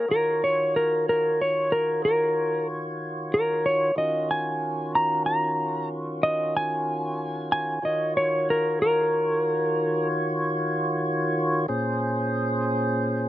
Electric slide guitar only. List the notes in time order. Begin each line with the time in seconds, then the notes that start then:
Already playing: A#4
0.11 A#4
0.44 C#5
0.76 A#4
1.09 A#4
1.42 C#5
1.72 A#4
2.05 A#4
3.34 A#4
3.66 C#5
3.98 D#5
4.31 G#5
4.95 A#5
5.26 A#5
6.23 D#5
6.57 G#5
7.52 G#5
7.85 D#5
8.17 C#5
8.50 A#4
8.82 A#4